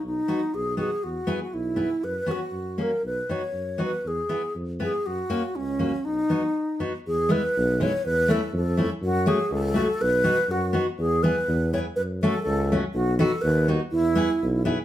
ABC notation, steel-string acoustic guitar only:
X:1
M:2/4
L:1/8
Q:1/4=121
K:B
V:1 name="Steel-string acoustic guitar"
z [B,DF] z [B,DF] | z [B,EG] z [B,EG] | z [B,CF] z [A,CF] | z [B,DF] z [B,DF] |
z [B,EG] z [B,EG] | z [A,CF] z [A,CF] | z [B,DF] z [B,DF] | [K:E] z [G,B,E] z [G,B,E] |
z [A,CE] z [A,CE] | z [A,CF] z [A,CF] | z [B,DF] z [B,DF] | z [B,EG] z [B,EG] |
z [A,CF] z [A,CF] | z [B,DF] z [B,DF] | z [B,EG] z [B,EG] |]